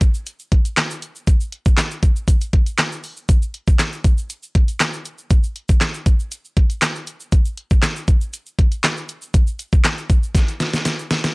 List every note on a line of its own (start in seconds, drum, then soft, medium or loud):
0.01 kick loud
0.01 closed hi-hat medium
0.01 shaker medium
0.14 shaker soft
0.26 closed hi-hat medium
0.26 shaker medium
0.40 shaker soft
0.52 kick loud
0.52 closed hi-hat medium
0.65 closed hi-hat medium
0.65 shaker medium
0.77 snare medium
0.77 clap loud
0.77 closed hi-hat loud
0.77 shaker medium
0.90 shaker medium
1.02 closed hi-hat medium
1.02 shaker soft
1.15 shaker soft
1.27 kick loud
1.27 closed hi-hat medium
1.27 shaker medium
1.40 shaker medium
1.52 closed hi-hat medium
1.66 kick loud
1.66 shaker medium
1.77 snare medium
1.77 clap loud
1.77 closed hi-hat medium
1.77 shaker medium
1.91 shaker soft
2.03 kick loud
2.03 closed hi-hat medium
2.03 shaker medium
2.16 shaker soft
2.28 kick medium
2.28 closed hi-hat medium
2.28 shaker medium
2.41 closed hi-hat medium
2.41 shaker soft
2.53 kick loud
2.53 closed hi-hat medium
2.67 closed hi-hat medium
2.67 shaker soft
2.78 snare medium
2.78 clap loud
2.78 closed hi-hat loud
2.78 shaker medium
2.92 shaker medium
3.04 open hi-hat medium
3.04 shaker medium
3.17 shaker soft
3.29 kick loud
3.29 closed hi-hat medium
3.29 shaker medium
3.42 shaker medium
3.54 closed hi-hat medium
3.67 kick loud
3.67 shaker medium
3.79 snare medium
3.79 clap loud
3.79 closed hi-hat medium
3.79 shaker medium
3.93 shaker soft
4.04 kick loud
4.04 closed hi-hat medium
4.04 shaker medium
4.18 shaker soft
4.30 closed hi-hat medium
4.30 shaker medium
4.43 shaker soft
4.55 kick loud
4.55 closed hi-hat medium
4.68 closed hi-hat medium
4.68 shaker medium
4.80 snare medium
4.80 clap loud
4.80 closed hi-hat loud
4.80 shaker medium
4.93 shaker medium
5.05 closed hi-hat medium
5.05 shaker soft
5.18 shaker soft
5.30 kick loud
5.30 closed hi-hat medium
5.30 shaker medium
5.44 shaker medium
5.56 closed hi-hat medium
5.69 kick loud
5.69 shaker medium
5.81 snare medium
5.81 clap loud
5.81 closed hi-hat medium
5.81 shaker medium
5.94 shaker soft
6.06 kick loud
6.06 closed hi-hat medium
6.06 shaker medium
6.20 shaker soft
6.31 closed hi-hat medium
6.31 shaker medium
6.45 shaker soft
6.57 kick loud
6.57 closed hi-hat medium
6.70 closed hi-hat medium
6.70 shaker medium
6.82 snare medium
6.82 clap loud
6.82 closed hi-hat loud
6.82 shaker medium
6.95 shaker medium
7.07 closed hi-hat medium
7.07 shaker soft
7.20 shaker soft
7.32 kick loud
7.32 closed hi-hat medium
7.32 shaker medium
7.45 shaker medium
7.58 closed hi-hat medium
7.71 kick loud
7.71 shaker medium
7.82 snare loud
7.82 clap loud
7.82 closed hi-hat medium
7.82 shaker medium
7.96 shaker soft
8.08 kick loud
8.08 closed hi-hat medium
8.08 shaker medium
8.21 shaker soft
8.33 closed hi-hat medium
8.33 shaker medium
8.46 shaker soft
8.59 kick loud
8.59 closed hi-hat medium
8.72 closed hi-hat medium
8.72 shaker medium
8.83 snare medium
8.83 clap loud
8.83 closed hi-hat loud
8.83 shaker medium
8.97 shaker medium
9.09 closed hi-hat medium
9.09 shaker soft
9.22 shaker soft
9.34 kick loud
9.34 closed hi-hat medium
9.34 shaker medium
9.47 shaker medium
9.59 closed hi-hat medium
9.59 shaker medium
9.73 kick loud
9.73 shaker medium
9.84 snare medium
9.84 clap loud
9.84 closed hi-hat medium
9.84 shaker medium
9.98 shaker soft
10.10 kick medium
10.10 closed hi-hat medium
10.10 shaker medium
10.23 shaker soft
10.35 kick loud
10.35 snare medium
10.35 closed hi-hat medium
10.35 shaker medium
10.48 closed hi-hat medium
10.48 shaker soft
10.60 snare medium
10.60 closed hi-hat medium
10.60 shaker medium
10.73 snare medium
10.73 closed hi-hat medium
10.73 shaker medium
10.85 snare medium
10.85 closed hi-hat loud
10.85 shaker medium
10.99 shaker medium
11.11 snare loud
11.11 open hi-hat medium
11.11 shaker soft
11.24 snare loud
11.24 shaker soft